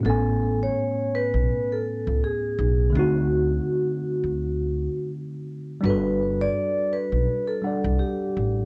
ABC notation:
X:1
M:4/4
L:1/16
Q:"Swing 16ths" 1/4=83
K:Ador
V:1 name="Vibraphone"
A3 ^c3 B3 A3 ^G4 | F12 z4 | B3 d3 B3 A3 G4 |]
V:2 name="Tine electric piano"
[A,,A,B,^C^g]16 | [D,A,C_EF]16 | [G,DFAB]8- [G,DFAB]2 [G,DAdf]6 |]
V:3 name="Upright bass" clef=bass
A,,,4 z3 B,,, z3 ^C,, z2 B,,,2 | D,,4 z3 D,,4 z4 z | G,,,4 z3 B,,, z3 C,, z2 A,,,2 |]